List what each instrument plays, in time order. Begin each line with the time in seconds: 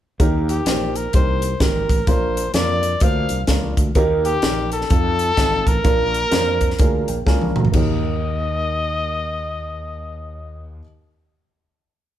0.20 fretless electric bass D#2, upright piano D#3 A#3 D#4 G4 A#4, kick, closed hi-hat
0.49 trumpet G4, closed hi-hat
0.66 fretless electric bass A#1, upright piano A#3 D#4 G4 C5, snare, closed hi-hat
0.96 trumpet A#4, closed hi-hat
1.13 fretless electric bass C2, upright piano A#3 D#4 G4 A#4, trumpet C5, kick, closed hi-hat
1.42 closed hi-hat
1.60 fretless electric bass G#1, upright piano A#3 D#4 G4 A#4, trumpet A#4, kick, snare, closed hi-hat
1.89 fretless electric bass A1, kick, closed hi-hat
2.07 fretless electric bass A#1, upright piano A#2 A#3 D4 F4 A#4, trumpet C5, kick, closed hi-hat
2.37 closed hi-hat
2.54 fretless electric bass F2, upright piano A#3 D4 F4 A#4, trumpet D5, snare, closed hi-hat
2.83 closed hi-hat
3.00 fretless electric bass D2, upright piano A#3 D4 F4 C5, trumpet F5, kick, closed hi-hat
3.29 fretless electric bass C2, closed hi-hat
3.47 fretless electric bass C#2, upright piano A#3 D4 F4 A#4, kick, snare, closed hi-hat
3.77 fretless electric bass D2, kick, closed hi-hat
3.95 fretless electric bass D#2, upright piano D#3 A#3 D#4 G4 A#4, kick, closed hi-hat
4.25 trumpet G4, closed hi-hat
4.42 fretless electric bass A#1, upright piano A#3 D#4 G4 A#4, snare, closed hi-hat
4.72 trumpet A4, closed hi-hat
4.81 snare
4.90 fretless electric bass F2, upright piano C4 D#4 F4 A4, kick, closed hi-hat
5.19 closed hi-hat
5.37 fretless electric bass G#1, upright piano C4 D#4 F4 A4, kick, snare, closed hi-hat
5.66 fretless electric bass A1, trumpet A#4, kick, closed hi-hat
5.84 fretless electric bass A#1, upright piano A#2 A#3 D4 F4 A#4, kick, closed hi-hat
6.14 closed hi-hat
6.31 fretless electric bass F2, upright piano A#3 D4 F4 C5, snare, closed hi-hat
6.61 kick, closed hi-hat
6.70 snare
6.79 fretless electric bass D2, upright piano A#3 D4 F4 G#4, kick, closed hi-hat
7.08 fretless electric bass A#1, upright piano G5, closed hi-hat
7.26 fretless electric bass C#2, upright piano A#3 D4 F4 A#4 G#5, kick, snare
7.41 high tom
7.56 fretless electric bass D2, upright piano A#5, mid tom
7.65 floor tom
7.72 fretless electric bass D#2, upright piano D#2 A#3 D#4 G4, trumpet D#5, kick, crash
7.76 upright piano A#4